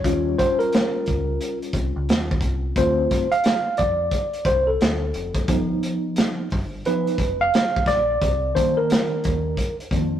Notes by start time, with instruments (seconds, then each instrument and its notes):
Already playing: tine electric piano C#5
0.04 fingered electric bass D#2, tine electric piano G3 C#4 F4, kick, closed hi-hat
0.38 tine electric piano C5, kick, closed hi-hat
0.59 tine electric piano A#4, closed hi-hat
0.73 snare, closed hi-hat
1.06 fingered electric bass C#2, kick, closed hi-hat
1.41 closed hi-hat
1.62 closed hi-hat
1.73 fingered electric bass C2, kick, closed hi-hat
1.96 fingered electric bass C#2
2.09 snare, closed hi-hat
2.31 kick
2.41 fingered electric bass C2, kick, closed hi-hat
2.76 fingered electric bass D2, tine electric piano A3 C4 F4 C5, kick, closed hi-hat
3.11 kick, closed hi-hat
3.32 tine electric piano F5, closed hi-hat
3.44 snare, closed hi-hat
3.77 fingered electric bass F2, tine electric piano D5, kick, closed hi-hat
4.11 kick, closed hi-hat
4.33 closed hi-hat
4.45 fingered electric bass C2, tine electric piano C5, kick, closed hi-hat
4.67 tine electric piano A4
4.81 fingered electric bass D2, snare, closed hi-hat
5.14 fingered electric bass F1, closed hi-hat
5.35 kick, closed hi-hat
5.48 fingered electric bass G1, tine electric piano F3 B3 D#4, kick, closed hi-hat
5.83 closed hi-hat
6.16 snare, closed hi-hat
6.50 fingered electric bass G1, kick, open hi-hat
6.85 tine electric piano F3 B3 D#4 B4, closed hi-hat
7.07 closed hi-hat
7.18 fingered electric bass F1, kick, closed hi-hat
7.41 tine electric piano F5
7.54 snare, closed hi-hat
7.76 kick
7.86 fingered electric bass A#1, tine electric piano D5, kick, snare, closed hi-hat
8.22 fingered electric bass C2, kick, closed hi-hat
8.55 tine electric piano D#3 A#3 D4 C5, kick, closed hi-hat
8.77 tine electric piano A#4
8.90 snare, closed hi-hat
9.24 fingered electric bass D#2, kick, closed hi-hat
9.57 kick, closed hi-hat
9.80 closed hi-hat
9.91 fingered electric bass F2, tine electric piano D#3 A#3 D4, kick, closed hi-hat